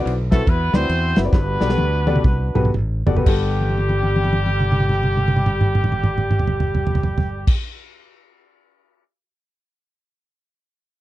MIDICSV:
0, 0, Header, 1, 5, 480
1, 0, Start_track
1, 0, Key_signature, 1, "major"
1, 0, Tempo, 421348
1, 1509, Time_signature, 4, 2, 24, 8
1, 1510, Tempo, 470588
1, 2950, Tempo, 537634
1, 10330, End_track
2, 0, Start_track
2, 0, Title_t, "Upright piano"
2, 0, Program_c, 0, 0
2, 0, Note_on_c, 0, 50, 74
2, 0, Note_on_c, 0, 60, 84
2, 0, Note_on_c, 0, 64, 77
2, 0, Note_on_c, 0, 66, 81
2, 0, Note_on_c, 0, 71, 78
2, 0, Note_on_c, 0, 74, 94
2, 125, Note_off_c, 0, 60, 0
2, 125, Note_off_c, 0, 64, 0
2, 126, Note_off_c, 0, 66, 0
2, 126, Note_off_c, 0, 71, 0
2, 126, Note_off_c, 0, 74, 0
2, 316, Note_off_c, 0, 50, 0
2, 356, Note_on_c, 0, 60, 79
2, 356, Note_on_c, 0, 66, 75
2, 358, Note_on_c, 0, 64, 69
2, 359, Note_on_c, 0, 71, 69
2, 359, Note_on_c, 0, 76, 86
2, 481, Note_off_c, 0, 60, 0
2, 481, Note_off_c, 0, 66, 0
2, 482, Note_off_c, 0, 64, 0
2, 483, Note_off_c, 0, 71, 0
2, 483, Note_off_c, 0, 76, 0
2, 829, Note_on_c, 0, 66, 64
2, 830, Note_on_c, 0, 60, 77
2, 831, Note_on_c, 0, 71, 70
2, 832, Note_on_c, 0, 64, 64
2, 833, Note_on_c, 0, 74, 82
2, 958, Note_off_c, 0, 66, 0
2, 959, Note_off_c, 0, 60, 0
2, 959, Note_off_c, 0, 71, 0
2, 960, Note_off_c, 0, 64, 0
2, 960, Note_off_c, 0, 74, 0
2, 1320, Note_on_c, 0, 64, 70
2, 1322, Note_on_c, 0, 66, 68
2, 1323, Note_on_c, 0, 60, 76
2, 1324, Note_on_c, 0, 76, 85
2, 1326, Note_on_c, 0, 71, 72
2, 1387, Note_off_c, 0, 64, 0
2, 1388, Note_off_c, 0, 66, 0
2, 1389, Note_off_c, 0, 60, 0
2, 1389, Note_off_c, 0, 76, 0
2, 1390, Note_off_c, 0, 71, 0
2, 1418, Note_on_c, 0, 64, 67
2, 1418, Note_on_c, 0, 71, 73
2, 1419, Note_on_c, 0, 60, 73
2, 1420, Note_on_c, 0, 66, 72
2, 1420, Note_on_c, 0, 74, 81
2, 1510, Note_off_c, 0, 64, 0
2, 1510, Note_off_c, 0, 71, 0
2, 1511, Note_off_c, 0, 60, 0
2, 1511, Note_off_c, 0, 66, 0
2, 1511, Note_off_c, 0, 74, 0
2, 1511, Note_on_c, 0, 43, 68
2, 1796, Note_on_c, 0, 59, 74
2, 1796, Note_on_c, 0, 67, 70
2, 1797, Note_on_c, 0, 74, 90
2, 1798, Note_on_c, 0, 66, 70
2, 1798, Note_on_c, 0, 69, 66
2, 1856, Note_off_c, 0, 59, 0
2, 1856, Note_off_c, 0, 67, 0
2, 1856, Note_off_c, 0, 74, 0
2, 1857, Note_off_c, 0, 66, 0
2, 1857, Note_off_c, 0, 69, 0
2, 1882, Note_on_c, 0, 59, 72
2, 1882, Note_on_c, 0, 66, 66
2, 1882, Note_on_c, 0, 67, 65
2, 1883, Note_on_c, 0, 69, 68
2, 1884, Note_on_c, 0, 71, 85
2, 2027, Note_off_c, 0, 66, 0
2, 2027, Note_off_c, 0, 67, 0
2, 2028, Note_off_c, 0, 59, 0
2, 2028, Note_off_c, 0, 69, 0
2, 2028, Note_off_c, 0, 71, 0
2, 2226, Note_off_c, 0, 43, 0
2, 2267, Note_on_c, 0, 66, 87
2, 2269, Note_on_c, 0, 67, 91
2, 2270, Note_on_c, 0, 59, 88
2, 2270, Note_on_c, 0, 69, 85
2, 2270, Note_on_c, 0, 74, 111
2, 2393, Note_off_c, 0, 66, 0
2, 2393, Note_off_c, 0, 67, 0
2, 2394, Note_off_c, 0, 59, 0
2, 2394, Note_off_c, 0, 69, 0
2, 2394, Note_off_c, 0, 74, 0
2, 2760, Note_on_c, 0, 67, 82
2, 2760, Note_on_c, 0, 69, 79
2, 2760, Note_on_c, 0, 71, 96
2, 2761, Note_on_c, 0, 59, 86
2, 2762, Note_on_c, 0, 66, 80
2, 2892, Note_off_c, 0, 67, 0
2, 2892, Note_off_c, 0, 69, 0
2, 2893, Note_off_c, 0, 59, 0
2, 2893, Note_off_c, 0, 66, 0
2, 2893, Note_off_c, 0, 71, 0
2, 3241, Note_on_c, 0, 59, 86
2, 3242, Note_on_c, 0, 66, 78
2, 3242, Note_on_c, 0, 67, 78
2, 3243, Note_on_c, 0, 69, 80
2, 3243, Note_on_c, 0, 74, 96
2, 3302, Note_off_c, 0, 59, 0
2, 3302, Note_off_c, 0, 66, 0
2, 3302, Note_off_c, 0, 67, 0
2, 3302, Note_off_c, 0, 74, 0
2, 3303, Note_off_c, 0, 69, 0
2, 3327, Note_on_c, 0, 59, 82
2, 3329, Note_on_c, 0, 67, 80
2, 3330, Note_on_c, 0, 66, 76
2, 3331, Note_on_c, 0, 69, 77
2, 3332, Note_on_c, 0, 71, 91
2, 3399, Note_off_c, 0, 59, 0
2, 3400, Note_on_c, 0, 55, 82
2, 3413, Note_on_c, 0, 59, 82
2, 3417, Note_off_c, 0, 66, 0
2, 3417, Note_off_c, 0, 67, 0
2, 3418, Note_off_c, 0, 69, 0
2, 3418, Note_off_c, 0, 71, 0
2, 3419, Note_on_c, 0, 43, 82
2, 3426, Note_on_c, 0, 78, 74
2, 3439, Note_on_c, 0, 69, 93
2, 7204, Note_off_c, 0, 55, 0
2, 7210, Note_off_c, 0, 59, 0
2, 7214, Note_off_c, 0, 43, 0
2, 7217, Note_off_c, 0, 78, 0
2, 7224, Note_off_c, 0, 69, 0
2, 10330, End_track
3, 0, Start_track
3, 0, Title_t, "Horn section"
3, 0, Program_c, 1, 61
3, 356, Note_on_c, 1, 57, 88
3, 356, Note_on_c, 1, 69, 95
3, 521, Note_off_c, 1, 57, 0
3, 521, Note_off_c, 1, 69, 0
3, 540, Note_on_c, 1, 59, 101
3, 540, Note_on_c, 1, 71, 110
3, 546, Note_on_c, 1, 64, 79
3, 550, Note_on_c, 1, 66, 75
3, 833, Note_off_c, 1, 64, 0
3, 835, Note_off_c, 1, 66, 0
3, 837, Note_on_c, 1, 60, 117
3, 837, Note_on_c, 1, 72, 127
3, 839, Note_off_c, 1, 59, 0
3, 839, Note_off_c, 1, 71, 0
3, 847, Note_on_c, 1, 64, 86
3, 848, Note_on_c, 1, 66, 83
3, 1325, Note_off_c, 1, 60, 0
3, 1325, Note_off_c, 1, 72, 0
3, 1469, Note_off_c, 1, 64, 0
3, 1470, Note_off_c, 1, 66, 0
3, 1516, Note_on_c, 1, 59, 91
3, 1516, Note_on_c, 1, 71, 99
3, 1522, Note_on_c, 1, 62, 82
3, 1523, Note_on_c, 1, 66, 79
3, 2912, Note_off_c, 1, 59, 0
3, 2912, Note_off_c, 1, 71, 0
3, 2915, Note_off_c, 1, 62, 0
3, 2915, Note_off_c, 1, 66, 0
3, 3419, Note_on_c, 1, 55, 91
3, 3419, Note_on_c, 1, 67, 99
3, 7214, Note_off_c, 1, 55, 0
3, 7214, Note_off_c, 1, 67, 0
3, 10330, End_track
4, 0, Start_track
4, 0, Title_t, "Fingered electric bass"
4, 0, Program_c, 2, 33
4, 64, Note_on_c, 2, 35, 107
4, 464, Note_off_c, 2, 35, 0
4, 535, Note_on_c, 2, 40, 102
4, 791, Note_off_c, 2, 40, 0
4, 835, Note_on_c, 2, 38, 95
4, 988, Note_off_c, 2, 38, 0
4, 1017, Note_on_c, 2, 40, 91
4, 1279, Note_off_c, 2, 40, 0
4, 1335, Note_on_c, 2, 30, 93
4, 1488, Note_off_c, 2, 30, 0
4, 1511, Note_on_c, 2, 31, 117
4, 1754, Note_off_c, 2, 31, 0
4, 1802, Note_on_c, 2, 35, 96
4, 1946, Note_off_c, 2, 35, 0
4, 1980, Note_on_c, 2, 38, 101
4, 2381, Note_off_c, 2, 38, 0
4, 2447, Note_on_c, 2, 36, 94
4, 2713, Note_off_c, 2, 36, 0
4, 2766, Note_on_c, 2, 35, 105
4, 2925, Note_off_c, 2, 35, 0
4, 2955, Note_on_c, 2, 33, 90
4, 3199, Note_off_c, 2, 33, 0
4, 3242, Note_on_c, 2, 30, 88
4, 3391, Note_off_c, 2, 30, 0
4, 3418, Note_on_c, 2, 31, 101
4, 7213, Note_off_c, 2, 31, 0
4, 10330, End_track
5, 0, Start_track
5, 0, Title_t, "Drums"
5, 80, Note_on_c, 9, 51, 76
5, 194, Note_off_c, 9, 51, 0
5, 361, Note_on_c, 9, 38, 120
5, 365, Note_on_c, 9, 36, 102
5, 365, Note_on_c, 9, 51, 66
5, 475, Note_off_c, 9, 38, 0
5, 479, Note_off_c, 9, 36, 0
5, 479, Note_off_c, 9, 51, 0
5, 535, Note_on_c, 9, 36, 108
5, 537, Note_on_c, 9, 51, 69
5, 648, Note_off_c, 9, 36, 0
5, 651, Note_off_c, 9, 51, 0
5, 838, Note_on_c, 9, 38, 122
5, 848, Note_on_c, 9, 51, 60
5, 952, Note_off_c, 9, 38, 0
5, 962, Note_off_c, 9, 51, 0
5, 1018, Note_on_c, 9, 51, 76
5, 1132, Note_off_c, 9, 51, 0
5, 1322, Note_on_c, 9, 51, 54
5, 1328, Note_on_c, 9, 38, 118
5, 1436, Note_off_c, 9, 51, 0
5, 1442, Note_off_c, 9, 38, 0
5, 1511, Note_on_c, 9, 36, 121
5, 1512, Note_on_c, 9, 38, 67
5, 1613, Note_off_c, 9, 36, 0
5, 1614, Note_off_c, 9, 38, 0
5, 1796, Note_on_c, 9, 38, 73
5, 1883, Note_off_c, 9, 38, 0
5, 1883, Note_on_c, 9, 38, 65
5, 1972, Note_on_c, 9, 48, 84
5, 1985, Note_off_c, 9, 38, 0
5, 2074, Note_off_c, 9, 48, 0
5, 2268, Note_on_c, 9, 48, 85
5, 2358, Note_on_c, 9, 47, 83
5, 2370, Note_off_c, 9, 48, 0
5, 2446, Note_on_c, 9, 36, 118
5, 2449, Note_off_c, 9, 47, 0
5, 2449, Note_on_c, 9, 47, 90
5, 2548, Note_off_c, 9, 36, 0
5, 2551, Note_off_c, 9, 47, 0
5, 2762, Note_on_c, 9, 45, 99
5, 2860, Note_off_c, 9, 45, 0
5, 2860, Note_on_c, 9, 45, 84
5, 2955, Note_off_c, 9, 45, 0
5, 2955, Note_on_c, 9, 45, 101
5, 3044, Note_off_c, 9, 45, 0
5, 3244, Note_on_c, 9, 43, 115
5, 3332, Note_off_c, 9, 43, 0
5, 3332, Note_on_c, 9, 43, 101
5, 3419, Note_on_c, 9, 36, 110
5, 3420, Note_on_c, 9, 49, 101
5, 3422, Note_off_c, 9, 43, 0
5, 3508, Note_off_c, 9, 36, 0
5, 3509, Note_off_c, 9, 49, 0
5, 3726, Note_on_c, 9, 48, 48
5, 3804, Note_off_c, 9, 48, 0
5, 3804, Note_on_c, 9, 48, 52
5, 3875, Note_off_c, 9, 48, 0
5, 3875, Note_on_c, 9, 48, 50
5, 3964, Note_off_c, 9, 48, 0
5, 3981, Note_on_c, 9, 48, 55
5, 4070, Note_off_c, 9, 48, 0
5, 4105, Note_on_c, 9, 48, 54
5, 4194, Note_off_c, 9, 48, 0
5, 4219, Note_on_c, 9, 48, 61
5, 4296, Note_off_c, 9, 48, 0
5, 4296, Note_on_c, 9, 48, 58
5, 4370, Note_off_c, 9, 48, 0
5, 4370, Note_on_c, 9, 48, 67
5, 4460, Note_off_c, 9, 48, 0
5, 4490, Note_on_c, 9, 48, 55
5, 4579, Note_off_c, 9, 48, 0
5, 4617, Note_on_c, 9, 47, 59
5, 4706, Note_off_c, 9, 47, 0
5, 4720, Note_on_c, 9, 47, 69
5, 4795, Note_off_c, 9, 47, 0
5, 4795, Note_on_c, 9, 47, 66
5, 4875, Note_off_c, 9, 47, 0
5, 4875, Note_on_c, 9, 47, 65
5, 4964, Note_off_c, 9, 47, 0
5, 4999, Note_on_c, 9, 47, 65
5, 5088, Note_off_c, 9, 47, 0
5, 5125, Note_on_c, 9, 47, 63
5, 5214, Note_off_c, 9, 47, 0
5, 5220, Note_on_c, 9, 47, 72
5, 5296, Note_off_c, 9, 47, 0
5, 5296, Note_on_c, 9, 47, 72
5, 5383, Note_on_c, 9, 45, 78
5, 5385, Note_off_c, 9, 47, 0
5, 5472, Note_off_c, 9, 45, 0
5, 5514, Note_on_c, 9, 45, 81
5, 5603, Note_off_c, 9, 45, 0
5, 5640, Note_on_c, 9, 45, 83
5, 5720, Note_off_c, 9, 45, 0
5, 5720, Note_on_c, 9, 45, 85
5, 5793, Note_off_c, 9, 45, 0
5, 5793, Note_on_c, 9, 45, 78
5, 5883, Note_off_c, 9, 45, 0
5, 5895, Note_on_c, 9, 45, 86
5, 5984, Note_off_c, 9, 45, 0
5, 6022, Note_on_c, 9, 45, 82
5, 6111, Note_off_c, 9, 45, 0
5, 6137, Note_on_c, 9, 45, 85
5, 6215, Note_on_c, 9, 43, 82
5, 6226, Note_off_c, 9, 45, 0
5, 6287, Note_off_c, 9, 43, 0
5, 6287, Note_on_c, 9, 43, 89
5, 6377, Note_off_c, 9, 43, 0
5, 6401, Note_on_c, 9, 43, 91
5, 6490, Note_off_c, 9, 43, 0
5, 6530, Note_on_c, 9, 43, 85
5, 6619, Note_off_c, 9, 43, 0
5, 6637, Note_on_c, 9, 43, 90
5, 6712, Note_off_c, 9, 43, 0
5, 6712, Note_on_c, 9, 43, 96
5, 6786, Note_off_c, 9, 43, 0
5, 6786, Note_on_c, 9, 43, 90
5, 6876, Note_off_c, 9, 43, 0
5, 6913, Note_on_c, 9, 43, 98
5, 7003, Note_off_c, 9, 43, 0
5, 7179, Note_on_c, 9, 36, 115
5, 7179, Note_on_c, 9, 49, 108
5, 7268, Note_off_c, 9, 36, 0
5, 7268, Note_off_c, 9, 49, 0
5, 10330, End_track
0, 0, End_of_file